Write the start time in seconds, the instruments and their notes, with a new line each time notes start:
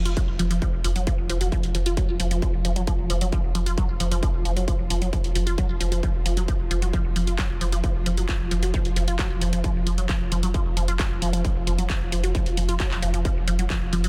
Already playing: synth drone F3 F4
0.05 sub bass F1, synth arpeggio sound F4, closed hi-hat
0.17 synth arpeggio sound F#3, kick, closed hi-hat
0.28 sub bass F1
0.39 sub bass F1, synth arpeggio sound F3, open hi-hat
0.51 sub bass F1, synth arpeggio sound F3, closed hi-hat
0.62 synth arpeggio sound F3, kick, closed hi-hat
0.73 sub bass F1
0.84 sub bass F1, synth arpeggio sound F3, open hi-hat
0.96 sub bass F1, synth arpeggio sound F#3, closed hi-hat
1.07 synth arpeggio sound F3, kick, closed hi-hat
1.18 sub bass F1
1.30 sub bass F1, synth arpeggio sound F3, open hi-hat
1.41 sub bass F1, synth arpeggio sound F#3, closed hi-hat
1.52 synth arpeggio sound F3, kick, closed hi-hat
1.63 sub bass F1, open hi-hat
1.75 sub bass F1, synth arpeggio sound F3, open hi-hat
1.86 sub bass F1, synth arpeggio sound F4, closed hi-hat
1.97 synth arpeggio sound F#3, kick, closed hi-hat
2.09 sub bass F1
2.20 sub bass F1, synth arpeggio sound F3, open hi-hat
2.31 sub bass F1, synth arpeggio sound F3, closed hi-hat
2.42 synth arpeggio sound F3, kick, closed hi-hat
2.54 sub bass F1
2.65 sub bass F1, synth arpeggio sound F3, open hi-hat
2.76 sub bass F1, synth arpeggio sound F#3, closed hi-hat
2.87 synth arpeggio sound F3, kick, closed hi-hat
2.99 sub bass F1
3.10 sub bass F1, synth arpeggio sound F3, open hi-hat
3.21 sub bass F1, synth arpeggio sound F#3, closed hi-hat
3.32 synth arpeggio sound F3, kick, closed hi-hat
3.44 sub bass F1
3.55 sub bass F1, synth arpeggio sound F3, open hi-hat
3.66 sub bass F1, synth arpeggio sound F4, closed hi-hat
3.78 synth arpeggio sound F#3, kick, closed hi-hat
3.89 sub bass F1
4.00 sub bass F1, synth arpeggio sound F3, open hi-hat
4.11 sub bass F1, synth arpeggio sound F3, closed hi-hat
4.23 synth arpeggio sound F3, kick, closed hi-hat
4.34 sub bass F1
4.45 sub bass F1, synth arpeggio sound F3, open hi-hat
4.56 sub bass F1, synth arpeggio sound F#3, closed hi-hat
4.68 synth arpeggio sound F3, kick, closed hi-hat
4.79 sub bass F1
4.90 sub bass F1, synth arpeggio sound F3, open hi-hat
5.02 sub bass F1, synth arpeggio sound F#3, closed hi-hat
5.13 synth arpeggio sound F3, kick, closed hi-hat
5.24 sub bass F1, open hi-hat
5.35 sub bass F1, synth arpeggio sound F3, open hi-hat
5.47 sub bass F1, synth arpeggio sound F4, closed hi-hat
5.58 synth arpeggio sound F#3, kick, closed hi-hat
5.69 sub bass F1
5.81 sub bass F1, synth arpeggio sound F3, open hi-hat
5.92 sub bass F1, synth arpeggio sound F3, closed hi-hat
6.03 synth arpeggio sound F3, kick, closed hi-hat
6.14 sub bass F1
6.26 sub bass F1, synth arpeggio sound F3, open hi-hat
6.37 sub bass F1, synth arpeggio sound F#3, closed hi-hat
6.48 synth arpeggio sound F3, kick, closed hi-hat
6.60 sub bass F1
6.71 sub bass F1, synth arpeggio sound F3, open hi-hat
6.82 sub bass F1, synth arpeggio sound F#3, closed hi-hat
6.93 synth arpeggio sound F3, kick, closed hi-hat
7.05 sub bass F1
7.16 sub bass F1, synth arpeggio sound F3, open hi-hat
7.27 sub bass F1, synth arpeggio sound F4, closed hi-hat
7.39 synth arpeggio sound F#3, kick, clap, closed hi-hat
7.50 sub bass F1
7.61 sub bass F1, synth arpeggio sound F3, open hi-hat
7.72 sub bass F1, synth arpeggio sound F3, closed hi-hat
7.84 synth arpeggio sound F3, kick, closed hi-hat
7.95 sub bass F1
8.06 sub bass F1, synth arpeggio sound F3, open hi-hat
8.17 sub bass F1, synth arpeggio sound F#3, closed hi-hat
8.29 synth arpeggio sound F3, kick, clap, closed hi-hat
8.40 sub bass F1
8.51 sub bass F1, synth arpeggio sound F3, open hi-hat
8.63 sub bass F1, synth arpeggio sound F#3, closed hi-hat
8.74 synth arpeggio sound F3, kick, closed hi-hat
8.85 sub bass F1, open hi-hat
8.96 sub bass F1, synth arpeggio sound F3, open hi-hat
9.08 sub bass F1, synth arpeggio sound F4, closed hi-hat
9.19 synth arpeggio sound F#3, kick, clap, closed hi-hat
9.30 sub bass F1
9.41 sub bass F1, synth arpeggio sound F3, open hi-hat
9.53 sub bass F1, synth arpeggio sound F3, closed hi-hat
9.64 synth arpeggio sound F3, kick, closed hi-hat
9.75 sub bass F1
9.87 sub bass F1, synth arpeggio sound F3, open hi-hat
9.98 sub bass F1, synth arpeggio sound F#3, closed hi-hat
10.09 synth arpeggio sound F3, kick, clap, closed hi-hat
10.20 sub bass F1
10.32 sub bass F1, synth arpeggio sound F3, open hi-hat
10.43 sub bass F1, synth arpeggio sound F#3, closed hi-hat
10.54 synth arpeggio sound F3, kick, closed hi-hat
10.66 sub bass F1
10.77 sub bass F1, synth arpeggio sound F3, open hi-hat
10.88 sub bass F1, synth arpeggio sound F4, closed hi-hat
10.99 synth arpeggio sound F#3, kick, clap, closed hi-hat
11.11 sub bass F1
11.22 sub bass F1, synth arpeggio sound F3, open hi-hat
11.33 sub bass F1, synth arpeggio sound F3, closed hi-hat
11.45 synth arpeggio sound F3, kick, closed hi-hat
11.56 sub bass F1
11.67 sub bass F1, synth arpeggio sound F3, open hi-hat
11.78 sub bass F1, synth arpeggio sound F#3, closed hi-hat
11.90 synth arpeggio sound F3, kick, clap, closed hi-hat
12.01 sub bass F1
12.12 sub bass F1, synth arpeggio sound F3, open hi-hat
12.23 sub bass F1, synth arpeggio sound F#3, closed hi-hat
12.35 synth arpeggio sound F3, kick, closed hi-hat
12.46 sub bass F1, open hi-hat
12.57 sub bass F1, synth arpeggio sound F3, open hi-hat
12.69 sub bass F1, synth arpeggio sound F4, closed hi-hat
12.80 synth arpeggio sound F#3, kick, clap, closed hi-hat
12.91 sub bass F1, clap
13.02 sub bass F1, synth arpeggio sound F3, open hi-hat
13.14 sub bass F1, synth arpeggio sound F3, closed hi-hat
13.25 synth arpeggio sound F3, kick, closed hi-hat
13.36 sub bass F1
13.48 sub bass F1, synth arpeggio sound F3, open hi-hat
13.59 sub bass F1, synth arpeggio sound F#3, closed hi-hat
13.70 synth arpeggio sound F3, kick, clap, closed hi-hat
13.81 sub bass F1
13.93 sub bass F1, synth arpeggio sound F3, open hi-hat
14.04 sub bass F1, synth arpeggio sound F#3, closed hi-hat